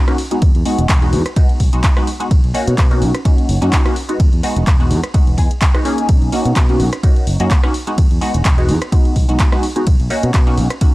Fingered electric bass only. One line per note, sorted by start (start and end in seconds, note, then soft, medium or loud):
0.42 0.51 E2 medium
0.55 0.62 E2 loud
0.79 0.86 E1 loud
0.89 1.14 E1 medium
1.13 1.22 E2 loud
1.60 1.69 B1 medium
1.73 1.80 B1 medium
2.31 2.40 B1 loud
2.44 2.51 B1 medium
2.68 2.75 B2 loud
3.02 3.11 B1 loud
3.49 3.58 F#1 medium
3.62 3.69 F#2 medium
4.20 4.29 E2 loud
4.33 4.40 E2 medium
4.56 4.64 E1 loud
4.67 4.92 E1 medium
4.91 5.00 E2 loud
5.27 5.35 E1 medium
5.38 5.47 E2 medium
6.09 6.18 B1 loud
6.22 6.29 B1 loud
6.45 6.53 B2 loud
6.56 6.81 B2 medium
6.80 6.89 B1 loud
7.27 7.36 F#1 medium
7.40 7.47 F#2 medium
7.98 8.07 E2 loud
8.11 8.18 E2 medium
8.34 8.42 E1 loud
8.69 8.77 E2 loud
9.16 9.25 B1 medium
9.29 9.36 B1 medium
9.87 9.96 B1 loud
10.00 10.07 B1 loud
10.23 10.31 B2 loud
10.34 10.59 B2 medium
10.58 10.66 B1 loud